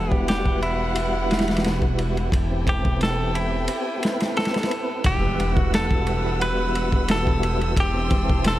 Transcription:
Already playing: detuned saw bass E1, tonewheel organ G3 B3 E4 F#4, violin section G3 E4 B4 F#5, clean electric guitar A4
0.12 clean electric guitar G4, kick
0.28 clean electric guitar G4, snare, ride
0.41 tonewheel organ G3 B3
0.46 tonewheel organ E4, kick
0.50 tonewheel organ F#4
0.62 clean electric guitar E4, ride
0.95 ride
1.31 snare, ride
1.39 snare, ride
1.48 snare, ride
1.56 snare, ride
1.64 snare, ride
1.82 kick
1.98 ride
2.17 ride
2.31 detuned saw bass E1, violin section A4 G5, kick, ride
2.48 tonewheel organ B3 C4 E4
2.52 tonewheel organ G4
2.67 clean electric guitar G4, kick, ride
2.85 kick
3.01 clean electric guitar A4, snare, ride
3.13 tonewheel organ B3 C4
3.19 tonewheel organ E4 G4
3.35 clean electric guitar E4, ride
3.68 ride
3.98 tonewheel organ B3 C4
4.03 tonewheel organ E4 B4, snare, ride
4.20 snare, ride
4.37 clean electric guitar A4, snare, ride
4.45 snare, ride
4.54 snare, ride
4.63 snare, ride
4.71 ride
5.04 detuned saw bass E1, clean electric guitar G4, violin section B4 F#5 E6, kick, ride, impact
5.20 tonewheel organ G3 B3 E4
5.25 tonewheel organ F#5
5.40 ride
5.55 clean electric guitar F#4, kick
5.74 clean electric guitar A4, snare, ride
5.86 tonewheel organ G3 B3
5.91 tonewheel organ E4, kick
5.95 tonewheel organ F#4
6.07 ride
6.41 clean electric guitar B4, ride
6.75 ride
6.92 kick
7.08 clean electric guitar A4, snare, ride
7.27 kick
7.43 ride
7.61 ride
7.77 detuned saw bass E1, clean electric guitar G4, violin section A5 C6, kick, ride
7.93 tonewheel organ B3 C4 E4
7.98 tonewheel organ G4
8.10 kick, ride
8.29 kick
8.44 clean electric guitar A4, snare, ride

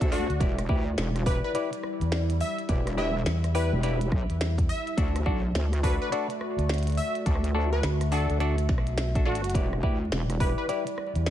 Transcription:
Already playing: analog synth pad A3 F#4 D5
0.01 wobble bass D2, clav D4 F#4 A4 E5, kick, closed hi-hat
0.12 clav D4 F#4 A4 D5, digital synth lead F#4, open hi-hat
0.30 fingered electric bass D2, closed hi-hat
0.40 wobble bass E1, analog synth pad G3 E4, clav E4 G4 B4 D5, kick, closed hi-hat
0.58 cross-stick, closed hi-hat
0.69 wobble bass D2, clav E4 G4 B4 D5, kick
0.98 wobble bass E1, snare, closed hi-hat
1.16 cross-stick, closed hi-hat
1.26 clav E4 G4 B4 D5, digital synth lead B4, kick, open hi-hat
1.44 digital synth lead B4
1.55 clav E4 G4 B4 D5, closed hi-hat
1.73 closed hi-hat
1.83 cross-stick
2.01 fingered electric bass E2, closed hi-hat
2.12 snare, closed hi-hat
2.30 closed hi-hat
2.41 digital synth lead E5, open hi-hat
2.59 closed hi-hat
2.69 wobble bass E1, clav E4 G4 B4 D5, analog synth pad E5, kick, closed hi-hat
2.87 cross-stick, closed hi-hat
2.97 clav E4 G4 B4 D5, digital synth lead E5
3.26 fingered electric bass E2, snare, closed hi-hat
3.44 cross-stick, closed hi-hat
3.55 clav E4 G4 B4 D5, digital synth lead B4, open hi-hat
3.73 wobble bass E1
3.83 clav E4 G4 B4 D5, closed hi-hat
4.01 closed hi-hat
4.12 wobble bass B1, kick, cross-stick
4.30 fingered electric bass E2, closed hi-hat
4.41 snare, closed hi-hat
4.58 kick, closed hi-hat
4.69 digital synth lead E5, open hi-hat
4.87 closed hi-hat
4.97 wobble bass D2, analog synth pad A3 F#4 D5, clav D4 F#4 A4 D5, kick, closed hi-hat
5.16 cross-stick, closed hi-hat
5.26 wobble bass B1, clav D4 F#4 A4 D5, kick
5.55 wobble bass D2, snare, closed hi-hat
5.73 cross-stick, closed hi-hat
5.83 clav D4 F#4 A4 D5, digital synth lead B4, kick, open hi-hat
6.02 digital synth lead B4
6.12 clav D4 F#4 A4 D5, closed hi-hat
6.30 closed hi-hat
6.41 cross-stick
6.58 fingered electric bass D2, closed hi-hat
6.69 snare, closed hi-hat
6.74 closed hi-hat
6.78 closed hi-hat
6.83 closed hi-hat
6.87 closed hi-hat
6.90 closed hi-hat
6.92 closed hi-hat
6.95 digital synth lead E5, closed hi-hat, open hi-hat
7.15 closed hi-hat
7.26 wobble bass D2, clav D4 F#4 A4 D5, analog synth pad E5, kick, closed hi-hat
7.35 cross-stick
7.44 closed hi-hat
7.54 clav D4 F#4 A4 D5
7.73 digital synth lead B4
7.83 fingered electric bass D2, snare, closed hi-hat
8.01 cross-stick, closed hi-hat
8.12 clav D4 F#4 A4 D5, digital synth lead A4, open hi-hat
8.30 fingered electric bass D2, closed hi-hat
8.40 clav D4 F#4 A4 D5, closed hi-hat
8.58 closed hi-hat
8.69 fingered electric bass B1, kick, snare
8.78 cross-stick
8.87 closed hi-hat
8.98 snare, closed hi-hat
9.15 clav D4 F#4 A4 E5, kick, closed hi-hat
9.25 clav D4 F#4 A4 D5, digital synth lead F#4
9.35 closed hi-hat
9.44 closed hi-hat
9.50 closed hi-hat
9.54 wobble bass E1, analog synth pad G3 E4 D5, clav E4 G4 B4 D5, kick, closed hi-hat
9.73 cross-stick
9.83 wobble bass D2, clav E4 G4 B4 D5, kick
10.12 wobble bass E1, snare, closed hi-hat
10.30 cross-stick, closed hi-hat
10.40 clav E4 G4 B4 D5, digital synth lead B4, kick, open hi-hat
10.58 digital synth lead B4
10.69 clav E4 G4 B4 D5, closed hi-hat
10.87 closed hi-hat
10.98 cross-stick
11.15 fingered electric bass E2, closed hi-hat
11.26 snare, closed hi-hat

